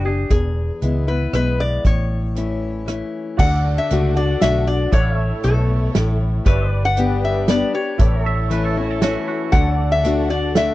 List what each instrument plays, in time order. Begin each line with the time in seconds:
Already playing: fingered electric bass F#1
0.05 steel-string acoustic guitar D4 G4, clean electric guitar G#4
0.30 fingered electric bass E1, steel-string acoustic guitar E2, resonator guitar played with a steel bar G#4, kick, closed hi-hat
0.81 fingered electric bass C#2, steel-string acoustic guitar E3 G#3 B3 E4, closed hi-hat
1.07 steel-string acoustic guitar B3 E4, resonator guitar played with a steel bar B4
1.33 fingered electric bass B1, steel-string acoustic guitar E3 G#3 B3 E4, resonator guitar played with a steel bar B4, cross-stick, closed hi-hat
1.60 resonator guitar played with a steel bar D5
1.85 fingered electric bass A1, steel-string acoustic guitar A2, resonator guitar played with a steel bar C#5, kick, closed hi-hat
2.35 steel-string acoustic guitar E3 A3 C#4 E4, closed hi-hat
2.86 steel-string acoustic guitar E3 A3 C#4 E4, cross-stick, closed hi-hat
3.37 fingered electric bass D2, steel-string acoustic guitar D3, violin section D4 A4 F#5, honky-tonk piano F#4 A4 D5, pedal steel guitar D5 F#5, resonator guitar played with a steel bar F#5, kick, crash
3.78 resonator guitar played with a steel bar E5
3.90 fingered electric bass C#2, steel-string acoustic guitar D3 A3 D4 F#4, closed hi-hat
4.16 steel-string acoustic guitar D4 F#4, resonator guitar played with a steel bar D5
4.41 fingered electric bass B1, steel-string acoustic guitar D3 A3 D4 F#4, resonator guitar played with a steel bar E5, snare, closed hi-hat
4.67 steel-string acoustic guitar D4 F#4, resonator guitar played with a steel bar D5
4.92 fingered electric bass A1, steel-string acoustic guitar A2, violin section A3 E4 C#5, honky-tonk piano E4 A4 C#5, resonator guitar played with a steel bar C#5, pedal steel guitar D5 F#5, kick, closed hi-hat
5.12 pedal steel guitar C#5
5.18 pedal steel guitar E5
5.43 fingered electric bass B1, steel-string acoustic guitar B2, resonator guitar played with a steel bar A4, closed hi-hat
5.95 fingered electric bass A1, steel-string acoustic guitar A2, snare, closed hi-hat
6.45 fingered electric bass G1, steel-string acoustic guitar G2, violin section G3 D4 B4, honky-tonk piano G4 B4 D5, resonator guitar played with a steel bar B4, pedal steel guitar C#5 E5, kick, closed hi-hat
6.72 pedal steel guitar B4 D5
6.85 resonator guitar played with a steel bar F#5
6.97 steel-string acoustic guitar G3 B3 D4 G4, closed hi-hat
7.25 resonator guitar played with a steel bar E5
7.48 steel-string acoustic guitar G3 B3 D4 G4, resonator guitar played with a steel bar D5, snare, closed hi-hat
7.74 steel-string acoustic guitar D4 G4, resonator guitar played with a steel bar C#5
7.98 fingered electric bass A1, steel-string acoustic guitar A2, violin section A3 E4 C#5, honky-tonk piano E4 A4 C#5, pedal steel guitar B4 D5, kick, closed hi-hat
8.21 pedal steel guitar C#5
8.25 pedal steel guitar A4, clean electric guitar E5
8.50 steel-string acoustic guitar E3 A3 C#4 E4, clean electric guitar B4, closed hi-hat
8.65 clean electric guitar A4
8.77 steel-string acoustic guitar C#4 E4, clean electric guitar F#4
8.90 clean electric guitar A4
9.01 steel-string acoustic guitar E3 A3 C#4 E4, honky-tonk piano E4 A4 C#5, clean electric guitar F#4, snare, closed hi-hat
9.28 clean electric guitar F#4
9.52 fingered electric bass D2, steel-string acoustic guitar D3, violin section D4 A4 F#5, honky-tonk piano F#4 A4 D5, pedal steel guitar A4 C#5, resonator guitar played with a steel bar F#5, kick, closed hi-hat
9.73 pedal steel guitar D5
9.92 resonator guitar played with a steel bar E5
10.04 steel-string acoustic guitar D3 A3 D4 F#4, closed hi-hat
10.30 steel-string acoustic guitar D4 F#4, resonator guitar played with a steel bar D5
10.55 steel-string acoustic guitar D3 A3 D4 F#4, honky-tonk piano F#4 A4 D5, resonator guitar played with a steel bar E5, snare, closed hi-hat